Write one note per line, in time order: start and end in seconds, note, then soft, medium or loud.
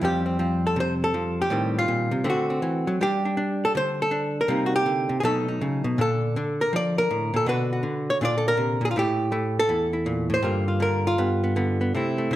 0.01 1.49 F2 medium
0.01 0.38 F3 soft
0.01 1.50 G3 soft
0.01 0.25 C4 soft
0.01 0.65 G4 medium
0.26 0.40 C4 soft
0.39 1.13 F3 medium
0.39 1.50 C4 soft
0.67 0.80 A4 medium
0.76 1.14 C3 medium
0.80 0.94 C5 medium
1.04 1.39 A4 medium
1.14 1.50 F3 medium
1.42 1.77 G4 medium
1.50 1.88 A2 medium
1.50 2.24 D#3 soft
1.50 2.24 G3 soft
1.50 2.24 C4 medium
1.79 2.27 F4 medium
1.88 2.11 A#2 medium
2.11 2.25 C3 medium
2.24 2.62 D3 medium
2.24 2.98 A3 medium
2.24 2.49 C4 soft
2.30 3.02 F#4 medium
2.50 2.99 C4 soft
2.62 2.86 E3 medium
2.87 3.00 F#3 medium
3.01 4.48 G3 medium
3.01 3.24 D4 soft
3.01 3.99 G4 medium
3.25 3.36 D4 soft
3.37 4.10 D4 medium
3.65 3.72 A4 loud
3.75 4.47 D3 medium
3.75 3.99 C5 loud
4.02 4.37 A4 loud
4.11 4.47 D4 medium
4.41 4.66 A#4 medium
4.48 5.08 C3 medium
4.48 4.85 G3 soft
4.48 5.22 A#3 soft
4.48 5.22 D#4 soft
4.66 4.74 F#4 medium
4.76 5.19 G4 loud
4.86 5.10 D3 medium
5.09 5.23 C3 medium
5.20 5.60 B2 medium
5.20 5.96 F#3 medium
5.20 5.24 G#4 medium
5.25 5.99 A3 soft
5.25 5.47 D#4 medium
5.25 5.98 A4 loud
5.48 5.97 D#4 soft
5.61 5.84 C#3 medium
5.84 5.98 B2 medium
5.98 6.35 A#2 medium
5.98 6.35 D3 soft
5.98 6.37 D4 soft
5.98 6.97 A4 loud
6.36 7.46 D3 medium
6.36 7.46 D4 soft
6.61 6.73 A#4 loud
6.73 7.09 F3 medium
6.73 6.98 D5 loud
6.98 7.48 A#4 loud
7.10 7.33 A2 medium
7.34 7.47 A#2 medium
7.34 7.48 A4 medium
7.46 7.83 B2 medium
7.46 7.82 D3 medium
7.46 8.20 D4 soft
7.46 7.71 F#4 medium
7.46 8.08 B4 medium
7.73 8.20 F#4 soft
7.83 8.20 D3 medium
8.10 8.17 C#5 loud
8.21 8.80 A#2 medium
8.21 8.95 D3 soft
8.21 8.94 D4 soft
8.21 8.37 F4 medium
8.21 8.46 D5 loud
8.38 8.45 A4 medium
8.48 8.97 A#4 loud
8.57 8.81 C3 medium
8.81 8.95 A#2 medium
8.85 8.90 G#4 medium
8.91 8.95 F4 medium
8.96 9.70 A2 medium
8.96 9.31 A3 soft
8.96 9.31 E4 medium
8.96 9.58 G4 loud
9.32 10.42 A3 medium
9.32 9.68 E4 soft
9.59 10.44 A4 loud
9.69 10.42 E2 medium
9.69 9.92 E4 soft
9.93 10.42 E4 soft
10.06 10.29 A#2 medium
10.30 10.43 A2 medium
10.34 10.82 C5 medium
10.43 11.16 G2 medium
10.43 10.79 D3 soft
10.43 11.17 A#3 soft
10.43 10.67 F4 soft
10.68 11.05 F4 soft
10.80 11.55 D3 medium
10.80 11.19 A#4 medium
11.07 11.94 F4 medium
11.18 11.91 G2 medium
11.18 11.42 B3 medium
11.44 11.55 B3 soft
11.56 11.93 D3 medium
11.56 11.80 B3 medium
11.81 11.92 B3 soft
11.95 12.30 C3 medium
11.95 12.17 A3 soft
11.95 12.36 C4 soft
11.95 12.32 E4 soft
12.18 12.36 A3 soft
12.31 12.36 C3 medium